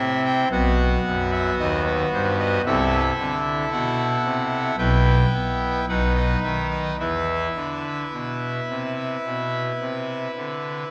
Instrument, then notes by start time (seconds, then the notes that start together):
pipe organ
Already playing: C3 C4 E4 E5
0.25 G5
0.51 B1 B2 B3 F#4 F#5
1.05 F#2
1.32 E5
1.59 D#2 D#5
1.86 B4
2.12 G2 C5
2.39 D#5
2.66 C2 C3 E4 A4 E5
3.19 D3
3.72 B2 F#5
4.24 C3
4.78 B1 B2 E4 B4 G5
5.33 B3
5.89 B1 B2 D#4 B4 F#5
6.16 D#5
6.43 D#3 E5
6.71 D#5
6.99 E2 E3 E4 B4 E5
7.56 D3
8.13 B2
8.69 C3
9.25 B2
9.80 C3
10.37 D3